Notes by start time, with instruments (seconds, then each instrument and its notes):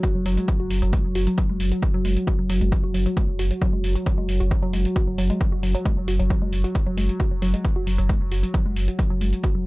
Already playing: synth drone F#3
0.03 synth arpeggio sound F#4, kick, closed hi-hat
0.15 sub bass F#1, synth arpeggio sound F#3
0.26 sub bass F#1, synth arpeggio sound F#3, open hi-hat
0.37 synth arpeggio sound G#3, closed hi-hat
0.48 kick, closed hi-hat
0.60 sub bass F#1, synth arpeggio sound F#4
0.70 sub bass F#1, synth arpeggio sound F#3, open hi-hat
0.82 sub bass F#1, synth arpeggio sound F#3, closed hi-hat
0.93 synth arpeggio sound G#3, kick, closed hi-hat
1.05 sub bass F#1
1.15 sub bass F#1, synth arpeggio sound F#4, open hi-hat
1.27 synth arpeggio sound F#3, closed hi-hat
1.38 synth arpeggio sound F#3, kick, closed hi-hat
1.49 sub bass F#1, synth arpeggio sound G#3
1.60 sub bass F#1, open hi-hat
1.72 synth arpeggio sound F#4, closed hi-hat
1.82 synth arpeggio sound F#3, kick, closed hi-hat
1.94 sub bass F#1, synth arpeggio sound F#3
2.05 sub bass F#1, synth arpeggio sound G#3, open hi-hat
2.16 closed hi-hat
2.27 synth arpeggio sound F#4, kick, closed hi-hat
2.39 sub bass F#1, synth arpeggio sound F#3
2.50 sub bass F#1, synth arpeggio sound F#3, open hi-hat
2.61 sub bass F#1, synth arpeggio sound G#3, closed hi-hat
2.72 kick, closed hi-hat
2.84 sub bass F#1, synth arpeggio sound F#4
2.94 sub bass F#1, synth arpeggio sound F#3, open hi-hat
3.06 synth arpeggio sound F#3, closed hi-hat
3.17 synth arpeggio sound G#3, kick, closed hi-hat
3.28 sub bass F#1
3.39 sub bass F#1, synth arpeggio sound F#4, open hi-hat
3.51 synth arpeggio sound F#3, closed hi-hat
3.62 synth arpeggio sound F#3, kick, closed hi-hat
3.73 sub bass F#1, synth arpeggio sound G#3
3.84 sub bass F#1, open hi-hat
3.95 synth arpeggio sound F#4, closed hi-hat
4.06 synth arpeggio sound F#3, kick, closed hi-hat
4.18 sub bass F#1, synth arpeggio sound G#3
4.29 sub bass F#1, open hi-hat
4.40 sub bass F#1, synth arpeggio sound F#4, closed hi-hat
4.51 synth arpeggio sound F#3, kick, closed hi-hat
4.63 sub bass F#1, synth arpeggio sound F#3
4.73 sub bass F#1, synth arpeggio sound G#3, open hi-hat
4.85 closed hi-hat
4.96 synth arpeggio sound F#4, kick, closed hi-hat
5.07 sub bass F#1, synth arpeggio sound F#3
5.18 sub bass F#1, synth arpeggio sound F#3, open hi-hat
5.30 synth arpeggio sound G#3, closed hi-hat
5.41 kick, closed hi-hat
5.52 sub bass F#1, synth arpeggio sound F#4
5.63 sub bass F#1, synth arpeggio sound F#3, open hi-hat
5.75 synth arpeggio sound F#3, closed hi-hat
5.85 synth arpeggio sound G#3, kick, closed hi-hat
5.97 sub bass F#1
6.08 sub bass F#1, synth arpeggio sound F#4, open hi-hat
6.19 sub bass F#1, synth arpeggio sound F#3, closed hi-hat
6.30 synth arpeggio sound F#3, kick, closed hi-hat
6.42 sub bass F#1, synth arpeggio sound G#3
6.53 sub bass F#1, open hi-hat
6.64 synth arpeggio sound F#4, closed hi-hat
6.75 synth arpeggio sound F#3, kick, closed hi-hat
6.86 sub bass F#1, synth arpeggio sound F#3
6.97 sub bass F#1, synth arpeggio sound G#3, open hi-hat
7.09 closed hi-hat
7.20 synth arpeggio sound F#4, kick, closed hi-hat
7.31 sub bass F#1, synth arpeggio sound F#3
7.42 sub bass F#1, synth arpeggio sound F#3, open hi-hat
7.54 synth arpeggio sound G#3, closed hi-hat
7.65 kick, closed hi-hat
7.76 sub bass F#1, synth arpeggio sound F#4
7.87 sub bass F#1, synth arpeggio sound F#3, open hi-hat
7.98 sub bass F#1, synth arpeggio sound F#3, closed hi-hat
8.09 kick, closed hi-hat
8.21 sub bass F#1
8.32 sub bass F#1, synth arpeggio sound F#4, open hi-hat
8.43 synth arpeggio sound F#3, closed hi-hat
8.54 synth arpeggio sound F#3, kick, closed hi-hat
8.66 sub bass F#1, synth arpeggio sound G#3
8.76 sub bass F#1, open hi-hat
8.88 synth arpeggio sound F#4, closed hi-hat
8.99 synth arpeggio sound F#3, kick, closed hi-hat
9.10 sub bass F#1, synth arpeggio sound F#3
9.21 sub bass F#1, synth arpeggio sound G#3, open hi-hat
9.33 closed hi-hat
9.43 synth arpeggio sound F#4, kick, closed hi-hat
9.55 sub bass F#1, synth arpeggio sound F#3